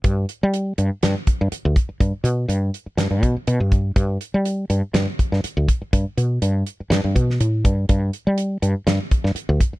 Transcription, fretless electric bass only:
X:1
M:4/4
L:1/16
Q:"Swing 16ths" 1/4=122
K:G
V:1 name="Fretless electric bass" clef=bass
G,,2 z G,3 G,, z G,, z2 G,, z D,, z2 | G,, z B,,2 G,,2 z2 G,, G,, B,, z B,, G,,3 | G,,2 z G,3 G,, z G,, z2 G,, z D,, z2 | G,, z B,,2 G,,2 z2 G,, G,, B,,2 A,,2 G,,2 |
G,,2 z G,3 G,, z G,, z2 G,, z D,, z2 |]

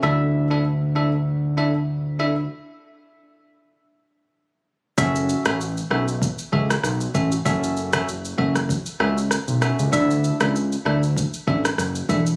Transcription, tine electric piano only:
X:1
M:4/4
L:1/16
Q:"Swing 16ths" 1/4=97
K:F#m
V:1 name="Tine electric piano"
[DEAe]3 [DEAe] z2 [DEAe] z3 [DEAe] z3 [DEAe] z | z16 | [CFAe]3 [CFAe] z2 [CFAe] z3 [CFAe] z3 [CFAe] z | [CFAe]3 [CFAe] z2 [CFAe] z3 [CFAe] z3 [CFAe]2 |
[DEAe]3 [DEAe] z2 [DEAe] z3 [DEAe] z3 [DEAe] z |]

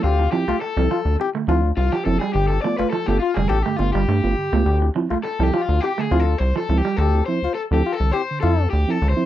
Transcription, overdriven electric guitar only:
X:1
M:4/4
L:1/16
Q:1/4=104
K:Ddor
V:1 name="Overdriven electric guitar"
F2 G2 A4 z4 F G A ^G | G A d B A G F ^G A =G F G4- G- | G z3 (3A2 G2 F2 (3G2 ^G2 A2 (3c2 A2 =G2 | A2 c2 (3A2 G2 A2 c2 A2 (3G2 A2 c2 |]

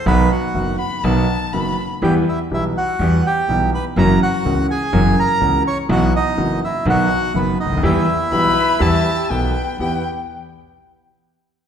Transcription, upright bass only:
X:1
M:4/4
L:1/16
Q:1/4=123
K:Em
V:1 name="Upright bass" clef=bass
B,,,3/2 z2 z/2 F,,,3/2 z2 z/2 B,,,3/2 z2 z/2 F,,,3/2 z2 z/2 | E,,3/2 z2 z/2 B,,,3/2 z2 z/2 E,,3/2 z2 z/2 B,,,3/2 z2 z/2 | F,,,3/2 z2 z/2 ^C,,3/2 z2 z/2 F,,,3/2 z2 z/2 C,,3/2 z2 z/2 | B,,,3/2 z2 z/2 F,,,3/2 z2 z/2 B,,,3/2 z2 z/2 F,,,3/2 z ^C,,/2 D,,/2 ^D,,/2 |
E,,3/2 z2 z/2 B,,,3/2 z2 z/2 E,,3/2 z2 z/2 B,,,3/2 z2 z/2 | E,,2 z12 z2 |]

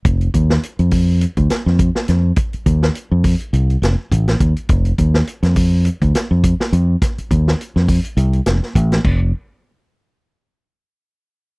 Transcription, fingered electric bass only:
X:1
M:4/4
L:1/16
Q:"Swing 16ths" 1/4=104
K:Fmix
V:1 name="Fingered electric bass" clef=bass
F,,,2 E,,2 z F,,4 D,, z F,,2 z F,,2 | z2 E,,2 z F,,2 z C,,2 F,,, z A,,,2 E,, z | F,,,2 E,,2 z F,,4 D,, z F,,2 z F,,2 | z2 E,,2 z F,,2 z C,,2 F,,, z A,,,2 F,,,2 |
z16 |]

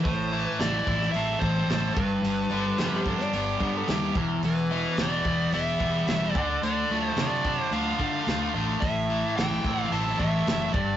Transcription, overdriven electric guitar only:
X:1
M:4/4
L:1/8
Q:1/4=109
K:Am
V:1 name="Overdriven electric guitar"
A,, E, E, E A C A G,, | G,, D, G, D G B, G E,, | E,, B,, E, B, E G, E D, | D, A, D, D F A, F A, |
A,, E, E, C E A, E G,, |]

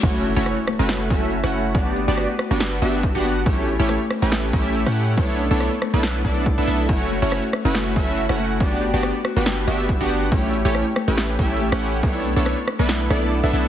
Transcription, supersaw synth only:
X:1
M:4/4
L:1/16
Q:"Swing 16ths" 1/4=140
K:Bm
V:1 name="Supersaw synth"
[A,CEFc]3 [A,CEFc]2 z2 [A,CEFB]3 [A,CEFe]3 [A,CEFf]3 | [B,DFGd]3 [B,DFGd]2 z2 [B,DFGB]3 [B,DFGe]3 [B,DFGf]3 | [A,CEGc]3 [A,CEGc]2 z2 [A,CEGB]3 [A,CEGe]3 [A,CEGf]3 | [B,DEAc]3 [B,DEAc]2 z2 [B,DEAB]3 [B,DEAd]3 [B,DEAe] [B,DEAe]2 |
[A,CEFc]3 [A,CEFc]2 z2 [A,CEFB]3 [A,CEFe]3 [A,CEFf]3 | [B,DFGd]3 [B,DFGd]2 z2 [B,DFGB]3 [B,DFGe]3 [B,DFGf]3 | [A,CEGc]3 [A,CEGc]2 z2 [A,CEGB]3 [A,CEGe]3 [A,CEGf]3 | [B,DEAc]3 [B,DEAc]2 z2 [B,DEAB]3 [B,DEAd]3 [B,DEAe] [B,DEAe]2 |]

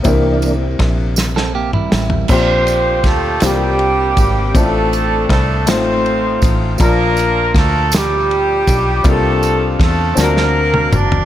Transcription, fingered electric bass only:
X:1
M:6/8
L:1/8
Q:3/8=53
K:Cmix
V:1 name="Fingered electric bass" clef=bass
C,,2 B,,,3 A,,, | B,,,2 D,, C,,2 _A,,, | A,,,2 C,, A,,,2 A,,, | B,,,2 D,,3 =B,,, |
C,,2 E,, D,,2 ^F,,, |]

